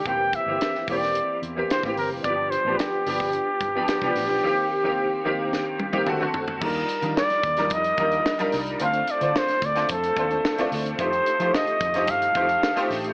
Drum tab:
CC |----------------|----------------|----------------|x---------------|
HH |x-x-x-o-x-x-x-o-|x-x-x-o-x-x-x-o-|----------------|-xxx-xxxxxxx-xox|
SD |----oo-o----oo--|----o--o----ooo-|--------o-------|----oo-o----ooo-|
T1 |----------------|----------------|----------oo----|----------------|
T2 |----------------|----------------|------------o---|----------------|
FT |----------------|----------------|--------------oo|----------------|
BD |o-o---o------o--|o------o--o--o--|----------------|o-----o-o-o-----|

CC |----------------|----------------|
HH |xxxx-xxxxxxx-xox|xxxx-xxxxxxx-xox|
SD |----oo-o----ooo-|----o--o----ooo-|
T1 |----------------|----------------|
T2 |----------------|----------------|
FT |----------------|----------------|
BD |------o-o-o-----|o-----o-o-o-----|